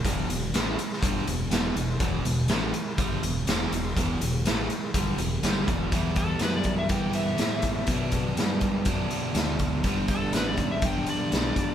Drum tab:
HH |x-x-x-x-x-x-x-x-|x-x-x-x-x-x-x-x-|x-x-x-x-x-x-x-x-|x-x-x-x-x-x-x-x-|
SD |----o--o----o---|----o-------o---|----o-------o---|----o-------o---|
BD |o-------o-------|o-------o-------|o-------o-----o-|o-o---o-o-----o-|

HH |x-x-x-x-x-x-x-x-|x-x-x-x-x-x-x-x-|
SD |----o-------o---|----o-------o---|
BD |o-o---o-o-----o-|o-o---o-o-----o-|